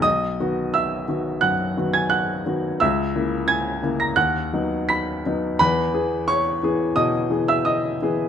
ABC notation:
X:1
M:4/4
L:1/16
Q:1/4=87
K:B
V:1 name="Grand piano"
[dd']4 [ee']4 [ff']3 [gg'] [ff']4 | [ee']4 [gg']3 [aa'] [ff']4 [bb']4 | [Bb]4 [cc']4 [dd']3 [ee'] [dd']4 |]
V:2 name="Grand piano"
B,,,2 [D,B,F]4 [D,B,F]2 F,,2 [D,B,F]4 [D,B,F]2 | C,,2 [C,A,E]4 [C,A,E]2 D,,2 [F,B,D]4 [F,B,D]2 | E,,2 [E,B,G]4 [E,B,G]2 B,,2 [E,B,G]4 [E,B,G]2 |]